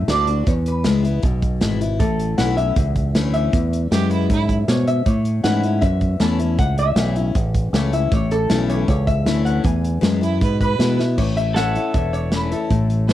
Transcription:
Already playing: steel-string acoustic guitar A2
0.08 fingered electric bass D2, steel-string acoustic guitar D3 A3 D4 F#4, resonator guitar played with a steel bar D5, snare, closed hi-hat
0.27 steel-string acoustic guitar D4 F#4, closed hi-hat
0.47 fingered electric bass E2, steel-string acoustic guitar E2, resonator guitar played with a steel bar C#5, kick, closed hi-hat
0.66 resonator guitar played with a steel bar B4, closed hi-hat
0.84 fingered electric bass C#2, steel-string acoustic guitar E3 G#3 B3 E4, snare, closed hi-hat
1.03 steel-string acoustic guitar B3 E4, closed hi-hat
1.23 fingered electric bass B1, steel-string acoustic guitar B2, kick, closed hi-hat
1.42 kick, closed hi-hat
1.61 fingered electric bass G#1, steel-string acoustic guitar E3 G#3 B3 E4, snare, closed hi-hat
1.81 steel-string acoustic guitar B3 E4, closed hi-hat
1.99 fingered electric bass A1, steel-string acoustic guitar A2, resonator guitar played with a steel bar A4, kick, closed hi-hat
2.19 closed hi-hat
2.38 fingered electric bass B1, steel-string acoustic guitar E3 A3 C#4 E4, resonator guitar played with a steel bar F#5, snare, closed hi-hat
2.57 steel-string acoustic guitar C#4 E4, resonator guitar played with a steel bar E5, closed hi-hat
2.76 fingered electric bass C#2, steel-string acoustic guitar E2, kick, closed hi-hat
2.96 kick, closed hi-hat
3.15 fingered electric bass D2, steel-string acoustic guitar E3 A3 C#4 E4, snare, closed hi-hat
3.34 resonator guitar played with a steel bar E5, closed hi-hat
3.53 fingered electric bass E2, steel-string acoustic guitar E2, kick, closed hi-hat
3.73 closed hi-hat
3.91 fingered electric bass F#2, steel-string acoustic guitar E3 G#3 B3 E4, fiddle G4, snare, closed hi-hat
4.11 fiddle E4, closed hi-hat
4.30 steel-string acoustic guitar F#2, fingered electric bass G#2, fiddle E4, kick, closed hi-hat
4.49 kick, closed hi-hat
4.68 steel-string acoustic guitar G#2, fingered electric bass B2, resonator guitar played with a steel bar C#5, snare, closed hi-hat
4.87 resonator guitar played with a steel bar E5, closed hi-hat
5.06 steel-string acoustic guitar A2, fingered electric bass A2, resonator guitar played with a steel bar C#5, kick, closed hi-hat
5.25 closed hi-hat
5.43 fingered electric bass G#2, steel-string acoustic guitar E3 A3 C#4 E4, resonator guitar played with a steel bar F#5, snare, closed hi-hat
5.63 steel-string acoustic guitar C#4 E4, closed hi-hat
5.81 steel-string acoustic guitar E2, fingered electric bass F#2, resonator guitar played with a steel bar E5, kick, closed hi-hat
6.01 kick, closed hi-hat
6.20 fingered electric bass E2, steel-string acoustic guitar E3 A3 C#4 E4, resonator guitar played with a steel bar A5, snare, closed hi-hat
6.39 steel-string acoustic guitar C#4 E4, closed hi-hat
6.59 fingered electric bass C#2, steel-string acoustic guitar A2, resonator guitar played with a steel bar F#5, kick, closed hi-hat
6.78 resonator guitar played with a steel bar E5, closed hi-hat
6.96 fingered electric bass B1, steel-string acoustic guitar E3 A3 C#4 E4, snare, closed hi-hat
7.16 steel-string acoustic guitar C#4 E4, closed hi-hat
7.35 fingered electric bass A1, steel-string acoustic guitar E2, kick, closed hi-hat
7.55 kick, closed hi-hat
7.73 fingered electric bass C#2, steel-string acoustic guitar E3 A3 C#4 E4, resonator guitar played with a steel bar C#5, snare, closed hi-hat
7.92 steel-string acoustic guitar C#4 E4, resonator guitar played with a steel bar E5, closed hi-hat
8.12 fingered electric bass A1, steel-string acoustic guitar A2, resonator guitar played with a steel bar C#5, kick, closed hi-hat
8.31 resonator guitar played with a steel bar A4, closed hi-hat
8.49 fingered electric bass B1, steel-string acoustic guitar E3 A3 C#4 E4, snare, closed hi-hat
8.70 resonator guitar played with a steel bar C#5, closed hi-hat
8.88 fingered electric bass C#2, steel-string acoustic guitar E2, resonator guitar played with a steel bar C#5, kick, closed hi-hat
9.07 resonator guitar played with a steel bar E5, kick, closed hi-hat
9.26 fingered electric bass D2, steel-string acoustic guitar E3 A3 C#4 E4, snare, closed hi-hat
9.45 resonator guitar played with a steel bar F#5, closed hi-hat
9.64 steel-string acoustic guitar E2, fingered electric bass E2, resonator guitar played with a steel bar G#5, kick, closed hi-hat
9.85 closed hi-hat
10.01 fingered electric bass F#2, steel-string acoustic guitar E3 G#3 B3 E4, snare, closed hi-hat
10.21 steel-string acoustic guitar B3 E4, fiddle E4, closed hi-hat
10.41 fingered electric bass G#2, steel-string acoustic guitar B2, fiddle B4, kick, closed hi-hat
10.61 resonator guitar played with a steel bar B4, fiddle B4, kick, closed hi-hat
10.79 fingered electric bass B2, steel-string acoustic guitar E3 G#3 B3 E4, snare, closed hi-hat
10.99 steel-string acoustic guitar B3 E4, snare
11.18 fingered electric bass A1, steel-string acoustic guitar A2, resonator guitar played with a steel bar C#5, kick, crash
11.37 resonator guitar played with a steel bar E5, closed hi-hat
11.54 steel-string acoustic guitar E3 A3 C#4 E4, pedal steel guitar A4 C#5 E5, resonator guitar played with a steel bar F#5, snare, closed hi-hat
11.75 steel-string acoustic guitar C#4 E4, closed hi-hat
11.94 fingered electric bass E1, steel-string acoustic guitar E2, resonator guitar played with a steel bar E5, kick, closed hi-hat
12.13 resonator guitar played with a steel bar C#5, closed hi-hat
12.32 steel-string acoustic guitar E3 A3 C#4 E4, resonator guitar played with a steel bar B4, snare, closed hi-hat
12.52 steel-string acoustic guitar C#4 E4, resonator guitar played with a steel bar A4, closed hi-hat
12.70 fingered electric bass A1, steel-string acoustic guitar A2, kick, closed hi-hat
12.90 closed hi-hat
13.08 steel-string acoustic guitar E3 A3 C#4, fiddle C#5, snare, closed hi-hat

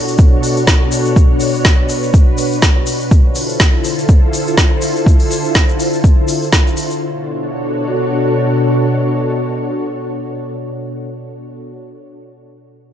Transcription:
Already playing: string machine B2 D4 F#4 A4 C#5
0.08 shaker
0.18 kick, shaker
0.43 open hi-hat, shaker
0.56 shaker
0.67 kick, snare, shaker
0.92 open hi-hat, shaker
1.05 shaker
1.16 string machine B4, kick, shaker
1.40 open hi-hat, shaker
1.54 shaker
1.65 kick, snare, shaker
1.89 open hi-hat, shaker
2.03 shaker
2.13 kick, shaker
2.38 open hi-hat, shaker
2.52 shaker
2.62 kick, snare, shaker
2.86 open hi-hat, shaker
3.00 shaker
3.11 string machine D3 E4 F4 A4 C5, kick, shaker
3.35 open hi-hat, shaker
3.49 shaker
3.60 kick, snare, shaker
3.84 open hi-hat, shaker
3.98 shaker
4.08 kick, shaker
4.33 open hi-hat, shaker
4.47 shaker
4.58 kick, snare, shaker
4.81 open hi-hat, shaker
4.96 shaker
5.06 kick, shaker
5.19 open hi-hat, shaker
5.31 open hi-hat, shaker
5.45 shaker
5.54 kick, snare, shaker
5.69 shaker
5.79 open hi-hat, shaker
5.93 shaker
6.04 kick, shaker
6.28 open hi-hat, shaker
6.42 shaker
6.53 kick, snare, shaker
6.67 shaker
6.77 open hi-hat, shaker
6.90 shaker
7.01 string machine B2 D4 F#4 A4 C#5

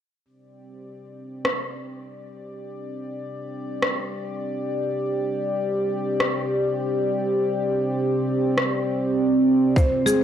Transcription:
0.25 analog synth pad C4 G4 D5
1.45 cross-stick
3.82 cross-stick
6.20 cross-stick
8.58 cross-stick
9.76 analog synth pad F4 C5 G5, marimba C5, kick, cabasa
10.06 marimba G#4, high conga, cabasa

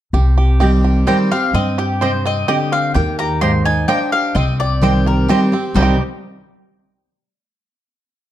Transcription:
0.13 upright bass C2, steel-string acoustic guitar C3, five-string banjo G4
0.38 five-string banjo G4
0.60 steel-string acoustic guitar D#3 G3 C4 G4, mandolin C4 G4 D#5 G5, five-string banjo G4
0.84 five-string banjo G4
1.07 steel-string acoustic guitar D#3 G3 C4 G4, mandolin C4 G4 D#5 G5, five-string banjo C5
1.32 five-string banjo C4, steel-string acoustic guitar C4 G4, mandolin F5
1.54 upright bass G2, steel-string acoustic guitar G2, five-string banjo C4, mandolin D#5
1.78 five-string banjo G4, mandolin G4
2.01 steel-string acoustic guitar C3, mandolin C4 G4 C5 D#5 G5, five-string banjo C5
2.26 five-string banjo C4, mandolin D#5
2.48 steel-string acoustic guitar D3, mandolin C4 G4 D#5 G5, five-string banjo G4
2.72 five-string banjo C4, mandolin F5
2.94 upright bass D#2, steel-string acoustic guitar D#3, five-string banjo G4, mandolin G5
3.19 five-string banjo G4, mandolin A#5
3.41 steel-string acoustic guitar G#2, mandolin A#3 G4 D#5 G5 C6, five-string banjo C5
3.65 five-string banjo D#4, mandolin G#5
3.88 mandolin A#3 G4 D#5 G5, steel-string acoustic guitar D4, five-string banjo C5
4.12 five-string banjo G4, mandolin F5
4.35 upright bass C2, steel-string acoustic guitar C3, five-string banjo C4, mandolin D#5
4.60 five-string banjo G4, mandolin D5
4.82 steel-string acoustic guitar D#3 G3 C4 G4, mandolin C4 G4 C5 D#5 G5, five-string banjo C5
5.06 five-string banjo G4, mandolin A#4
5.28 steel-string acoustic guitar D#3 G3 C4 G4, mandolin C4 G4 C5 D#5 G5, five-string banjo G4
5.52 five-string banjo C4, steel-string acoustic guitar C4 G4
5.74 upright bass C2, steel-string acoustic guitar C3 D#3 G3 C4 G4, five-string banjo G3, mandolin C4 G4 C5 D#5 G5
5.79 five-string banjo C4 D#4 G4

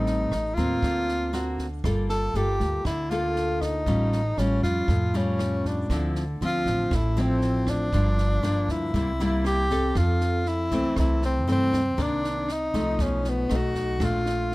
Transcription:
Already playing: upright bass A1, nylon-string guitar A2 G3 C4 D#4, tenor saxophone D#4
0.06 snare
0.32 upright bass A1, cross-stick, snare
0.54 upright bass D#2, nylon-string guitar A#3 C4, tenor saxophone F4, kick, snare
0.83 upright bass D2, nylon-string guitar D3, kick, snare
1.08 snare
1.33 nylon-string guitar A#3 C4 F#4, cross-stick, snare
1.58 kick, snare
1.84 upright bass G1, nylon-string guitar G3 A#3 F4 A4, kick, cross-stick, snare
2.09 tenor saxophone A4, snare
2.34 upright bass G1, nylon-string guitar A#3 F4 A4, tenor saxophone G4, snare
2.60 upright bass D2, kick, snare
2.85 upright bass D2, nylon-string guitar D3, tenor saxophone E4, kick, cross-stick, snare
3.10 nylon-string guitar A#3 F4 A4, tenor saxophone F4, snare
3.36 snare
3.61 tenor saxophone D#4, kick, cross-stick, snare
3.86 upright bass A1, nylon-string guitar A2 G3 C#4 F4, kick, snare
4.12 snare
4.37 upright bass A1, nylon-string guitar G3 C#4 F4, tenor saxophone C#4, cross-stick, snare
4.63 upright bass F2, tenor saxophone F4, kick, snare
4.88 upright bass F2, nylon-string guitar A2, kick, snare
5.14 nylon-string guitar G3 C#4 F4, tenor saxophone C#4, snare
5.39 cross-stick, snare
5.64 tenor saxophone D4, kick, snare
5.90 upright bass D2, nylon-string guitar D3 F3 C4 E4, kick, cross-stick, snare
6.15 snare
6.41 upright bass D2, nylon-string guitar F3 C4, tenor saxophone F4, snare
6.66 upright bass A1, kick, snare
6.91 upright bass A1, nylon-string guitar A2, tenor saxophone E4, kick, cross-stick, snare
7.17 nylon-string guitar F3 C4 E4, snare
7.21 tenor saxophone C4
7.41 snare
7.67 tenor saxophone D4, kick, cross-stick, snare
7.92 upright bass G1, nylon-string guitar G2 F3 A#3 D4, kick, snare
8.18 snare
8.43 upright bass G1, nylon-string guitar F3 A#3 D4, cross-stick, snare
8.68 upright bass D2, tenor saxophone E4, kick, snare
8.94 upright bass C2, nylon-string guitar C3 G3 A#3 E4, kick, snare
9.20 nylon-string guitar G3 A#3 E4, snare
9.45 tenor saxophone G4, cross-stick, snare
9.70 nylon-string guitar C4 A4, kick, snare
9.95 upright bass F2, nylon-string guitar F2, tenor saxophone F4, kick, cross-stick, snare
10.20 snare
10.46 tenor saxophone E4, snare
10.71 upright bass C2, nylon-string guitar E3 A3 C4, kick, snare
10.96 upright bass C2, nylon-string guitar C3, tenor saxophone E4, kick, cross-stick, snare
11.22 tenor saxophone C4, snare
11.47 upright bass G2, nylon-string guitar E3 A3 C4, snare
11.52 tenor saxophone C4
11.73 kick, cross-stick, snare
11.97 upright bass C2, nylon-string guitar C3 D#3 A#3 D4, kick, snare
12.02 tenor saxophone D4
12.24 snare
12.48 cross-stick, snare
12.53 tenor saxophone D#4
12.74 upright bass C2, nylon-string guitar F3 A3 D#4, kick, snare
12.99 upright bass B1, nylon-string guitar B2, tenor saxophone C#4, kick, snare
13.24 snare
13.29 tenor saxophone B3
13.49 upright bass B1, nylon-string guitar A3 D#4, cross-stick, snare
13.56 tenor saxophone F#4
13.75 kick, snare
14.00 upright bass A#1, nylon-string guitar A#2 A3 D4, kick, cross-stick, snare
14.04 tenor saxophone F4
14.26 snare
14.52 snare

